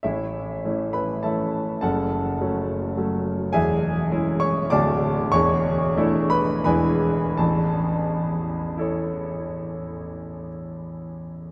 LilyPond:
<<
  \new Staff \with { instrumentName = "Grand piano" } { \time 3/4 \key a \major \tempo 4 = 95 << { <e' cis'' e''>4. <b' b''>8 <a' e'' a''>4 | <a' fis'' a''>2~ <a' fis'' a''>8 r8 | <gis' e'' gis''>4. <cis'' cis'''>8 <d'' a'' d'''>4 | <cis'' cis'''>4. <b' b''>8 <b' gis'' b''>4 |
a''2.~ | a''2. | } \\ { r2. | r2. | r2. | r2. |
r2 <e' a' cis''>4~ | <e' a' cis''>2. | } >> }
  \new Staff \with { instrumentName = "Grand piano" } { \clef bass \time 3/4 \key a \major <a,, a,>4 <e a cis'>4 <e a cis'>4 | <fis,, fis,>4 <fis a cis'>4 <fis a cis'>4 | <e,, e,>4 <gis cis' e'>4 <d,, d, a d' fis'>4 | <e,, e,>4 <a d' e'>4 <e,, e, gis d' e'>4 |
<a,, e,>2.~ | <a,, e,>2. | }
>>